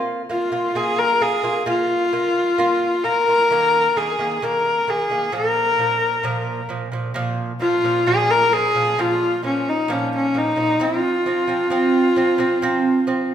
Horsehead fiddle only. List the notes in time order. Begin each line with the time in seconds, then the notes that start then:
0.31 F4
0.76 G#4
0.99 A#4
1.22 G#4
1.68 F4
3.05 A#4
3.97 G#4
4.45 A#4
4.90 G#4
5.33 A#4
7.60 F4
8.07 G#4
8.31 A#4
8.53 G#4
9.00 F4
9.45 C#4
9.69 D#4
9.92 C#4
10.16 C#4
10.38 D#4
10.83 F4